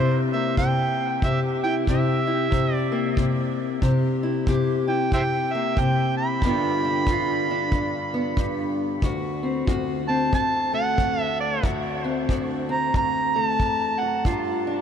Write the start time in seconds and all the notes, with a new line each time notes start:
Already playing: C3 E4 G4 C5
0.33 A#3 E5
0.57 C3 G5, kick
1.22 C3 G4 E5, kick
1.64 E4 G5
1.87 C3 G4 E5, kick
2.27 E4
2.51 C3, kick
2.74 D5
2.92 A#3
3.17 C3, kick
3.82 C3 G4, kick
4.23 E4
4.47 C3 G4, kick
4.87 E4 G5
5.12 C3 C5 E5 G5, kick
5.53 A#3 E5
5.77 C3 G5, kick
6.18 B5
6.42 G2 D3 B3 D4, kick
6.47 F4
6.85 D4
7.07 G2 F4, kick
7.51 D4
7.72 G2, kick
8.14 B3
8.37 G2, kick
9.02 D2 F#4, kick
9.43 C4
9.67 D2 F#4, kick
10.08 C4 A5
10.33 D2 A5, kick
10.73 A3 F#5
10.98 D2, kick
11.21 E5
11.41 D5
11.63 D2 F#4, kick
12.04 C4
12.29 D2 F#4, kick
12.69 C4 A#5
12.94 D2 A#5, kick
13.35 A3 A#5
13.46 A5
13.60 E2, kick
13.99 F#2 F#5
14.25 G2 F4, kick
14.67 D4